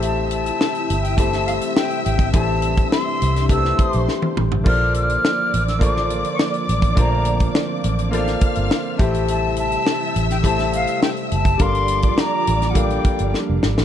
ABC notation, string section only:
X:1
M:4/4
L:1/8
Q:1/4=104
K:Aphr
V:1 name="String section"
[ee']8- | [ee']4- [ee'] [cc']2 z | [dd']8- | [dd']4 [ff']3 [ee']- |
[ee']8 | [dd']8 |]